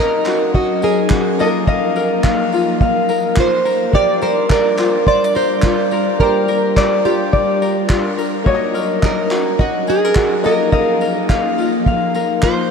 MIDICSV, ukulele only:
0, 0, Header, 1, 2, 480
1, 0, Start_track
1, 0, Key_signature, -2, "major"
1, 0, Tempo, 566038
1, 1421, Time_signature, 4, 2, 24, 8
1, 10776, End_track
2, 0, Start_track
2, 0, Title_t, "Ukulele"
2, 0, Program_c, 0, 24
2, 0, Note_on_c, 0, 70, 66
2, 0, Note_on_c, 0, 73, 71
2, 0, Note_on_c, 0, 75, 62
2, 228, Note_on_c, 0, 66, 61
2, 460, Note_off_c, 0, 75, 0
2, 463, Note_on_c, 0, 75, 62
2, 702, Note_off_c, 0, 70, 0
2, 705, Note_on_c, 0, 70, 55
2, 937, Note_off_c, 0, 66, 0
2, 947, Note_on_c, 0, 66, 56
2, 1185, Note_off_c, 0, 73, 0
2, 1188, Note_off_c, 0, 75, 0
2, 1188, Note_on_c, 0, 75, 79
2, 1242, Note_off_c, 0, 66, 0
2, 1412, Note_off_c, 0, 75, 0
2, 1421, Note_on_c, 0, 75, 81
2, 1428, Note_on_c, 0, 77, 56
2, 1663, Note_off_c, 0, 70, 0
2, 1663, Note_on_c, 0, 70, 63
2, 1894, Note_off_c, 0, 77, 0
2, 1898, Note_on_c, 0, 77, 63
2, 2145, Note_off_c, 0, 70, 0
2, 2148, Note_on_c, 0, 65, 53
2, 2384, Note_off_c, 0, 77, 0
2, 2387, Note_on_c, 0, 77, 65
2, 2623, Note_on_c, 0, 70, 54
2, 2855, Note_off_c, 0, 65, 0
2, 2859, Note_on_c, 0, 65, 57
2, 3095, Note_off_c, 0, 75, 0
2, 3098, Note_off_c, 0, 70, 0
2, 3098, Note_on_c, 0, 70, 61
2, 3340, Note_off_c, 0, 65, 0
2, 3343, Note_on_c, 0, 67, 77
2, 3344, Note_off_c, 0, 77, 0
2, 3347, Note_on_c, 0, 74, 66
2, 3577, Note_off_c, 0, 74, 0
2, 3580, Note_off_c, 0, 70, 0
2, 3580, Note_on_c, 0, 70, 68
2, 3813, Note_off_c, 0, 70, 0
2, 3816, Note_on_c, 0, 74, 75
2, 4062, Note_on_c, 0, 65, 57
2, 4294, Note_off_c, 0, 74, 0
2, 4297, Note_on_c, 0, 72, 65
2, 4445, Note_off_c, 0, 72, 0
2, 4445, Note_on_c, 0, 74, 63
2, 4537, Note_on_c, 0, 70, 59
2, 4773, Note_off_c, 0, 65, 0
2, 4783, Note_on_c, 0, 65, 49
2, 5017, Note_off_c, 0, 70, 0
2, 5021, Note_on_c, 0, 70, 58
2, 5253, Note_off_c, 0, 67, 0
2, 5256, Note_off_c, 0, 74, 0
2, 5263, Note_on_c, 0, 67, 84
2, 5266, Note_on_c, 0, 74, 66
2, 5496, Note_off_c, 0, 70, 0
2, 5500, Note_on_c, 0, 70, 69
2, 5732, Note_off_c, 0, 74, 0
2, 5742, Note_on_c, 0, 74, 72
2, 5967, Note_off_c, 0, 65, 0
2, 5977, Note_on_c, 0, 65, 63
2, 6204, Note_off_c, 0, 74, 0
2, 6215, Note_on_c, 0, 74, 68
2, 6457, Note_off_c, 0, 70, 0
2, 6460, Note_on_c, 0, 70, 58
2, 6687, Note_off_c, 0, 65, 0
2, 6697, Note_on_c, 0, 65, 52
2, 6933, Note_off_c, 0, 65, 0
2, 6936, Note_off_c, 0, 70, 0
2, 6936, Note_on_c, 0, 70, 56
2, 7176, Note_off_c, 0, 74, 0
2, 7176, Note_on_c, 0, 73, 65
2, 7180, Note_off_c, 0, 67, 0
2, 7182, Note_on_c, 0, 75, 58
2, 7413, Note_off_c, 0, 70, 0
2, 7413, Note_on_c, 0, 70, 60
2, 7646, Note_off_c, 0, 75, 0
2, 7650, Note_on_c, 0, 75, 68
2, 7891, Note_off_c, 0, 70, 0
2, 7895, Note_on_c, 0, 66, 56
2, 8128, Note_off_c, 0, 73, 0
2, 8132, Note_off_c, 0, 75, 0
2, 8132, Note_on_c, 0, 75, 68
2, 8375, Note_on_c, 0, 68, 62
2, 8519, Note_off_c, 0, 68, 0
2, 8519, Note_on_c, 0, 70, 50
2, 8607, Note_off_c, 0, 66, 0
2, 8617, Note_on_c, 0, 66, 54
2, 8851, Note_off_c, 0, 75, 0
2, 8851, Note_on_c, 0, 75, 80
2, 8914, Note_off_c, 0, 70, 0
2, 8915, Note_off_c, 0, 66, 0
2, 9083, Note_off_c, 0, 75, 0
2, 9093, Note_on_c, 0, 75, 77
2, 9101, Note_on_c, 0, 77, 67
2, 9340, Note_on_c, 0, 70, 69
2, 9578, Note_off_c, 0, 77, 0
2, 9582, Note_on_c, 0, 77, 69
2, 9825, Note_on_c, 0, 65, 57
2, 10064, Note_off_c, 0, 77, 0
2, 10068, Note_on_c, 0, 77, 65
2, 10302, Note_off_c, 0, 70, 0
2, 10306, Note_on_c, 0, 70, 62
2, 10546, Note_off_c, 0, 65, 0
2, 10549, Note_on_c, 0, 65, 55
2, 10776, Note_off_c, 0, 65, 0
2, 10776, Note_off_c, 0, 70, 0
2, 10776, Note_off_c, 0, 75, 0
2, 10776, Note_off_c, 0, 77, 0
2, 10776, End_track
0, 0, End_of_file